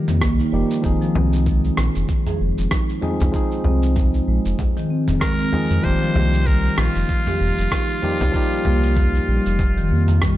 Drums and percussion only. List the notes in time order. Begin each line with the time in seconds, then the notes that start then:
0.08 mid tom, cabasa
0.21 kick, cross-stick, cabasa
0.39 cabasa
0.71 cabasa
0.84 kick, cabasa
1.02 cabasa
1.15 frame drum
1.33 cabasa
1.46 kick, cabasa
1.64 cabasa
1.77 cross-stick
1.95 cabasa
2.09 kick, cabasa
2.27 mid tom, cabasa
2.58 cabasa
2.71 kick, cross-stick, cabasa
2.89 cabasa
3.02 mid tom
3.20 frame drum, cabasa
3.34 kick, cabasa
3.51 cabasa
3.64 frame drum
3.83 cabasa
3.96 kick, mid tom, cabasa
4.14 cabasa
4.45 cabasa
4.59 kick, frame drum, cabasa
4.77 cabasa
5.08 mid tom, cabasa
5.21 kick, cross-stick, cabasa
5.40 cabasa
5.53 frame drum
5.71 cabasa
5.84 kick, cabasa
6.02 cabasa
6.16 frame drum
6.33 cabasa
6.47 kick, cabasa
6.65 cabasa
6.78 cross-stick
6.96 cabasa
7.09 kick, cabasa
7.27 mid tom, cabasa
7.58 cabasa
7.72 kick, cross-stick, cabasa
7.90 cabasa
8.03 mid tom
8.21 frame drum, cabasa
8.34 kick, cabasa
8.52 cabasa
8.65 frame drum
8.83 cabasa
8.96 kick, mid tom, cabasa
9.15 cabasa
9.46 cabasa
9.59 kick, frame drum, cabasa
9.77 cabasa
10.08 mid tom, cabasa
10.22 kick, cross-stick, cabasa